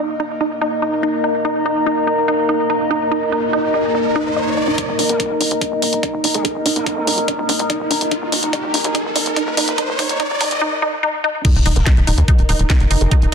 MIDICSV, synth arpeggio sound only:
0, 0, Header, 1, 2, 480
1, 0, Start_track
1, 0, Tempo, 416667
1, 1668, Time_signature, 4, 2, 24, 8
1, 15370, End_track
2, 0, Start_track
2, 0, Title_t, "Synth arpeggio sound"
2, 0, Program_c, 0, 84
2, 228, Note_on_c, 0, 63, 83
2, 335, Note_off_c, 0, 63, 0
2, 468, Note_on_c, 0, 63, 79
2, 540, Note_off_c, 0, 63, 0
2, 708, Note_on_c, 0, 63, 85
2, 751, Note_off_c, 0, 63, 0
2, 948, Note_on_c, 0, 63, 74
2, 1055, Note_off_c, 0, 63, 0
2, 1188, Note_on_c, 0, 63, 84
2, 1259, Note_off_c, 0, 63, 0
2, 1428, Note_on_c, 0, 63, 73
2, 1471, Note_off_c, 0, 63, 0
2, 1668, Note_on_c, 0, 63, 79
2, 1775, Note_off_c, 0, 63, 0
2, 1908, Note_on_c, 0, 63, 78
2, 1979, Note_off_c, 0, 63, 0
2, 2148, Note_on_c, 0, 63, 86
2, 2191, Note_off_c, 0, 63, 0
2, 2388, Note_on_c, 0, 63, 72
2, 2495, Note_off_c, 0, 63, 0
2, 2628, Note_on_c, 0, 63, 88
2, 2700, Note_off_c, 0, 63, 0
2, 2868, Note_on_c, 0, 63, 75
2, 2911, Note_off_c, 0, 63, 0
2, 3108, Note_on_c, 0, 63, 84
2, 3215, Note_off_c, 0, 63, 0
2, 3348, Note_on_c, 0, 63, 80
2, 3420, Note_off_c, 0, 63, 0
2, 3588, Note_on_c, 0, 63, 82
2, 3631, Note_off_c, 0, 63, 0
2, 3828, Note_on_c, 0, 63, 78
2, 3935, Note_off_c, 0, 63, 0
2, 4068, Note_on_c, 0, 63, 86
2, 4140, Note_off_c, 0, 63, 0
2, 4308, Note_on_c, 0, 63, 77
2, 4351, Note_off_c, 0, 63, 0
2, 4548, Note_on_c, 0, 63, 86
2, 4655, Note_off_c, 0, 63, 0
2, 4788, Note_on_c, 0, 63, 97
2, 4859, Note_off_c, 0, 63, 0
2, 5028, Note_on_c, 0, 75, 84
2, 5135, Note_off_c, 0, 75, 0
2, 5268, Note_on_c, 0, 63, 78
2, 5311, Note_off_c, 0, 63, 0
2, 5388, Note_on_c, 0, 63, 73
2, 5459, Note_off_c, 0, 63, 0
2, 5508, Note_on_c, 0, 63, 81
2, 5551, Note_off_c, 0, 63, 0
2, 5748, Note_on_c, 0, 63, 78
2, 5855, Note_off_c, 0, 63, 0
2, 5988, Note_on_c, 0, 63, 83
2, 6060, Note_off_c, 0, 63, 0
2, 6228, Note_on_c, 0, 63, 80
2, 6271, Note_off_c, 0, 63, 0
2, 6468, Note_on_c, 0, 63, 82
2, 6575, Note_off_c, 0, 63, 0
2, 6708, Note_on_c, 0, 63, 75
2, 6780, Note_off_c, 0, 63, 0
2, 6948, Note_on_c, 0, 63, 84
2, 6991, Note_off_c, 0, 63, 0
2, 7188, Note_on_c, 0, 63, 74
2, 7295, Note_off_c, 0, 63, 0
2, 7428, Note_on_c, 0, 63, 81
2, 7499, Note_off_c, 0, 63, 0
2, 7669, Note_on_c, 0, 63, 81
2, 7711, Note_off_c, 0, 63, 0
2, 7909, Note_on_c, 0, 63, 88
2, 8016, Note_off_c, 0, 63, 0
2, 8148, Note_on_c, 0, 63, 76
2, 8220, Note_off_c, 0, 63, 0
2, 8388, Note_on_c, 0, 63, 84
2, 8431, Note_off_c, 0, 63, 0
2, 8628, Note_on_c, 0, 63, 70
2, 8735, Note_off_c, 0, 63, 0
2, 8868, Note_on_c, 0, 63, 85
2, 8940, Note_off_c, 0, 63, 0
2, 9108, Note_on_c, 0, 63, 79
2, 9151, Note_off_c, 0, 63, 0
2, 9348, Note_on_c, 0, 63, 73
2, 9455, Note_off_c, 0, 63, 0
2, 9588, Note_on_c, 0, 63, 71
2, 9660, Note_off_c, 0, 63, 0
2, 9828, Note_on_c, 0, 63, 80
2, 9871, Note_off_c, 0, 63, 0
2, 10068, Note_on_c, 0, 63, 72
2, 10175, Note_off_c, 0, 63, 0
2, 10308, Note_on_c, 0, 63, 85
2, 10415, Note_off_c, 0, 63, 0
2, 10548, Note_on_c, 0, 63, 70
2, 10619, Note_off_c, 0, 63, 0
2, 10788, Note_on_c, 0, 63, 81
2, 10831, Note_off_c, 0, 63, 0
2, 11028, Note_on_c, 0, 63, 77
2, 11135, Note_off_c, 0, 63, 0
2, 11268, Note_on_c, 0, 63, 80
2, 11375, Note_off_c, 0, 63, 0
2, 11508, Note_on_c, 0, 63, 81
2, 11579, Note_off_c, 0, 63, 0
2, 11748, Note_on_c, 0, 63, 88
2, 11855, Note_off_c, 0, 63, 0
2, 11988, Note_on_c, 0, 63, 77
2, 12059, Note_off_c, 0, 63, 0
2, 12228, Note_on_c, 0, 63, 90
2, 12335, Note_off_c, 0, 63, 0
2, 12468, Note_on_c, 0, 63, 84
2, 12575, Note_off_c, 0, 63, 0
2, 12708, Note_on_c, 0, 63, 88
2, 12815, Note_off_c, 0, 63, 0
2, 12948, Note_on_c, 0, 63, 90
2, 13055, Note_off_c, 0, 63, 0
2, 13188, Note_on_c, 0, 63, 84
2, 13231, Note_off_c, 0, 63, 0
2, 13428, Note_on_c, 0, 63, 79
2, 13535, Note_off_c, 0, 63, 0
2, 13668, Note_on_c, 0, 63, 88
2, 13739, Note_off_c, 0, 63, 0
2, 13908, Note_on_c, 0, 63, 76
2, 13951, Note_off_c, 0, 63, 0
2, 14148, Note_on_c, 0, 63, 85
2, 14255, Note_off_c, 0, 63, 0
2, 14388, Note_on_c, 0, 63, 77
2, 14460, Note_off_c, 0, 63, 0
2, 14628, Note_on_c, 0, 63, 81
2, 14671, Note_off_c, 0, 63, 0
2, 14868, Note_on_c, 0, 63, 79
2, 14975, Note_off_c, 0, 63, 0
2, 15108, Note_on_c, 0, 63, 85
2, 15180, Note_off_c, 0, 63, 0
2, 15370, End_track
0, 0, End_of_file